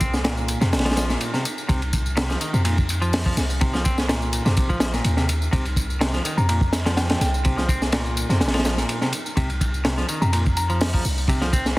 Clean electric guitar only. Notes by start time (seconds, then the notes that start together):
0.00 C4
0.24 A#2
0.61 C3
0.85 F3
1.10 A#2
1.34 C3
1.69 C3
2.17 C3
2.29 F3
2.41 D#3
2.53 C3
2.65 A#2
3.02 F3
3.26 F3
3.61 C3
3.74 F3
3.85 C4
4.08 A#2
4.45 C3
4.69 F3
4.93 A#2
5.17 C3
5.53 C3
6.01 C3
6.14 F3
6.25 D#3
6.38 C3
6.49 A#2
6.86 F3
7.10 F3
7.45 C3
7.57 F3
7.69 C4
7.93 A#2
8.30 C3
8.54 F3
8.78 A#2
9.02 C3
9.37 C3
9.85 C3
9.98 F3
10.09 D#3
10.22 C3
10.33 A#2
10.70 F3
10.94 F3
11.29 C3
11.42 F3
11.53 C4